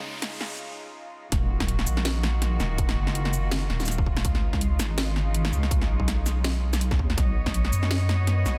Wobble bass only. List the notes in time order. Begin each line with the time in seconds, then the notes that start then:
0.40 G#1
1.32 D#1
1.87 A#1
2.60 D#1
2.97 F#1
3.70 D#1
4.25 C#2
4.80 G#1
5.53 C#2
5.89 B1
6.99 D#2
7.18 B1
7.73 F#2
8.46 B1